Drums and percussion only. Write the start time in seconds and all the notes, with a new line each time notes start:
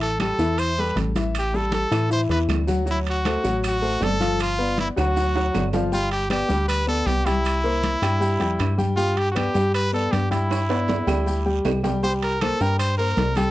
0.01 high conga, high timbale, maracas
0.20 high conga, high timbale, short guiro, claves, maracas
0.39 short guiro, maracas
0.58 high conga, high timbale, long guiro, claves, maracas
0.78 high conga, maracas
0.97 high conga, high timbale, short guiro, maracas
1.16 high conga, high timbale, short guiro, maracas
1.34 high conga, high timbale, long guiro, claves, maracas
1.53 high conga, maracas
1.72 high conga, high timbale, short guiro, maracas
1.92 high conga, high timbale, short guiro, claves, maracas
2.11 high conga, long guiro, maracas
2.30 high conga, high timbale, maracas
2.49 high conga, high timbale, low timbale, short guiro, claves, maracas
2.68 high conga, short guiro, maracas
2.87 high conga, long guiro, maracas
3.06 high conga, high timbale, maracas
3.25 high conga, high timbale, short guiro, claves, maracas
3.44 short guiro, maracas
3.63 high conga, high timbale, long guiro, claves, maracas
3.83 high conga, maracas
4.01 high conga, high timbale, low timbale, short guiro, maracas
4.20 high conga, high timbale, short guiro, maracas
4.40 high conga, high timbale, long guiro, claves, maracas
4.60 high conga, maracas
4.77 high conga, high timbale, short guiro, maracas
4.97 high conga, high timbale, short guiro, claves, maracas
5.16 high conga, high timbale, long guiro, maracas
5.36 high conga, high timbale, maracas
5.55 high conga, low timbale, short guiro, claves, maracas
5.73 high conga, low timbale, short guiro, maracas
5.92 high conga, long guiro, maracas
6.11 high conga, high timbale, maracas
6.30 high conga, high timbale, short guiro, claves, maracas
6.50 short guiro, maracas
6.69 high conga, high timbale, long guiro, claves, maracas
6.88 high conga, maracas
7.07 high conga, high timbale, short guiro, maracas
7.26 high conga, high timbale, short guiro, maracas
7.45 high conga, high timbale, long guiro, claves, maracas
7.65 high conga, maracas
7.83 high conga, high timbale, short guiro, maracas
8.03 high conga, high timbale, short guiro, claves, maracas
8.21 high conga, long guiro, maracas
8.41 high conga, high timbale, maracas
8.59 high conga, high timbale, short guiro, claves, maracas
8.79 high conga, short guiro, maracas
8.98 high conga, long guiro, maracas
9.17 high conga, high timbale, maracas
9.36 high conga, high timbale, short guiro, claves, maracas
9.54 short guiro, maracas
9.74 high conga, high timbale, long guiro, claves, maracas
9.94 high conga, maracas
10.13 high conga, high timbale, short guiro, maracas
10.31 high conga, high timbale, short guiro, maracas
10.50 high conga, high timbale, long guiro, claves, maracas
10.70 high conga, high timbale, maracas
10.88 high conga, low timbale, short guiro, maracas
11.07 high conga, low timbale, short guiro, claves, maracas
11.26 high conga, long guiro, maracas
11.46 high conga, maracas
11.65 high conga, low timbale, short guiro, claves, maracas
11.84 high conga, low timbale, short guiro, maracas
12.03 high conga, long guiro, maracas
12.22 high conga, high timbale, maracas
12.41 high conga, high timbale, short guiro, claves, maracas
12.60 short guiro, maracas
12.79 high conga, high timbale, long guiro, claves, maracas
12.99 high conga, maracas
13.17 high conga, high timbale, low timbale, short guiro, maracas
13.35 high conga, high timbale, short guiro, maracas